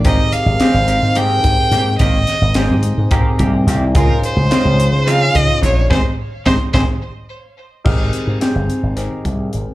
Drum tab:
CC |-------|-------|-------|-------|
HH |xxxxxxx|xxxxxxx|xxxxxxx|-------|
SD |--o---o|-oo---o|--o----|o-oo---|
BD |o----o-|o---oo-|o----o-|o-oo---|

CC |x------|
HH |-xxxxxx|
SD |--o-o--|
BD |o----o-|